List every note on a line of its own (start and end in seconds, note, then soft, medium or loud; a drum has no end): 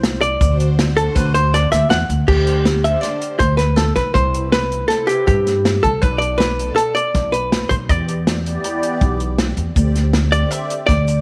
0.00 0.34 C2 medium
0.00 0.21 C5 loud
0.00 snare loud
0.00 closed hi-hat medium
0.21 0.57 D5 loud
0.21 closed hi-hat medium
0.41 1.07 D2 medium
0.41 0.67 D3 medium
0.41 0.67 D4 medium
0.41 0.67 F#4 medium
0.41 0.68 C5 medium
0.41 kick loud
0.41 closed hi-hat medium
0.41 shaker medium
0.60 closed hi-hat medium
0.60 shaker soft
0.79 snare loud
0.79 closed hi-hat loud
0.79 shaker soft
0.96 1.23 D3 medium
0.96 1.23 D4 medium
0.96 1.23 F#4 medium
0.96 1.15 A4 medium
0.96 1.23 C5 medium
0.96 closed hi-hat medium
1.15 1.65 D2 medium
1.15 1.34 B4 medium
1.15 kick loud
1.15 closed hi-hat medium
1.15 shaker medium
1.34 1.54 C5 medium
1.34 closed hi-hat medium
1.54 1.71 D5 medium
1.54 snare soft
1.54 closed hi-hat medium
1.54 shaker soft
1.72 1.88 D2 medium
1.72 1.90 E5 medium
1.72 snare soft
1.72 closed hi-hat medium
1.72 shaker medium
1.90 2.07 E2 medium
1.90 2.25 F#5 medium
1.90 snare loud
1.90 closed hi-hat medium
2.09 2.26 D2 medium
2.09 closed hi-hat medium
2.28 2.94 D2 medium
2.28 2.54 D3 medium
2.28 2.54 D4 medium
2.28 2.54 G4 medium
2.28 2.86 G4 medium
2.28 2.54 C5 medium
2.28 kick loud
2.28 crash medium
2.47 closed hi-hat medium
2.65 snare loud
2.65 closed hi-hat medium
2.84 3.10 D3 medium
2.84 3.10 D4 medium
2.84 3.10 G4 medium
2.84 3.10 C5 medium
2.84 3.01 E5 medium
2.84 closed hi-hat medium
3.01 3.41 D5 medium
3.01 snare soft
3.01 closed hi-hat medium
3.21 closed hi-hat medium
3.39 3.90 D2 medium
3.39 3.57 C5 medium
3.39 kick loud
3.39 closed hi-hat medium
3.57 3.76 B4 medium
3.57 snare soft
3.57 closed hi-hat medium
3.76 3.95 A4 medium
3.76 snare loud
3.76 closed hi-hat medium
3.96 4.13 B1 medium
3.96 4.14 B4 medium
3.96 kick medium
3.96 snare soft
3.96 closed hi-hat medium
4.14 4.81 C2 medium
4.14 4.52 C5 medium
4.14 kick loud
4.14 closed hi-hat medium
4.33 4.47 C3 medium
4.33 4.47 C4 medium
4.33 4.47 E4 medium
4.33 4.47 B4 medium
4.33 closed hi-hat medium
4.52 4.87 B4 medium
4.52 snare loud
4.52 closed hi-hat medium
4.72 closed hi-hat medium
4.88 5.16 C3 medium
4.88 5.16 C4 medium
4.88 5.17 E4 medium
4.88 5.08 A4 medium
4.88 5.17 B4 medium
4.88 snare soft
4.88 closed hi-hat medium
5.07 5.26 G4 medium
5.07 closed hi-hat medium
5.27 5.77 G2 loud
5.27 5.85 G4 medium
5.27 kick loud
5.27 closed hi-hat medium
5.47 snare soft
5.47 closed hi-hat medium
5.65 snare loud
5.65 closed hi-hat medium
5.83 6.00 C2 medium
5.83 6.02 A4 medium
5.83 kick medium
5.83 closed hi-hat medium
6.02 6.69 B1 loud
6.02 6.16 B2 medium
6.02 6.16 B3 medium
6.02 6.16 A4 medium
6.02 6.21 B4 medium
6.02 6.16 D5 medium
6.02 kick loud
6.02 closed hi-hat medium
6.18 6.39 D5 medium
6.18 closed hi-hat medium
6.38 6.75 B4 medium
6.38 snare loud
6.38 closed hi-hat medium
6.59 6.72 B2 medium
6.59 6.72 B3 medium
6.59 6.72 A4 medium
6.59 6.72 D5 medium
6.59 closed hi-hat medium
6.76 6.94 A4 medium
6.76 closed hi-hat medium
6.95 7.34 D5 loud
6.95 closed hi-hat medium
7.14 7.64 B1 medium
7.14 kick loud
7.14 snare soft
7.14 closed hi-hat medium
7.32 7.71 B4 medium
7.32 closed hi-hat medium
7.52 snare loud
7.52 closed hi-hat medium
7.69 7.88 B1 medium
7.69 7.75 C5 medium
7.69 kick medium
7.69 closed hi-hat medium
7.89 8.56 E2 medium
7.89 8.03 E3 medium
7.89 8.03 B3 medium
7.89 8.03 G4 medium
7.89 8.64 D5 medium
7.89 8.03 D5 medium
7.89 kick loud
7.89 closed hi-hat medium
8.08 closed hi-hat medium
8.27 snare loud
8.27 closed hi-hat medium
8.45 8.98 E3 medium
8.45 8.98 B3 medium
8.45 8.98 G4 medium
8.45 8.98 D5 medium
8.45 closed hi-hat medium
8.64 closed hi-hat medium
8.83 closed hi-hat medium
9.01 9.51 B1 loud
9.01 kick loud
9.01 closed hi-hat medium
9.20 closed hi-hat medium
9.38 snare loud
9.38 closed hi-hat medium
9.57 9.74 E2 medium
9.57 closed hi-hat medium
9.75 10.43 D2 loud
9.75 9.89 D3 medium
9.75 9.89 C4 medium
9.75 9.89 G4 medium
9.75 9.89 D5 medium
9.75 kick loud
9.75 closed hi-hat medium
9.75 shaker medium
9.95 snare soft
9.95 closed hi-hat medium
10.13 snare loud
10.13 closed hi-hat medium
10.32 10.58 D3 medium
10.32 10.59 C4 medium
10.32 10.59 G4 medium
10.32 10.51 D5 medium
10.32 10.59 D5 medium
10.32 closed hi-hat medium
10.32 shaker soft
10.51 10.86 E5 medium
10.51 closed hi-hat medium
10.51 shaker medium
10.70 closed hi-hat medium
10.87 11.21 D2 medium
10.87 11.21 D5 medium
10.87 kick loud
10.87 snare soft
10.87 closed hi-hat medium
10.87 shaker soft
11.08 closed hi-hat medium
11.08 shaker soft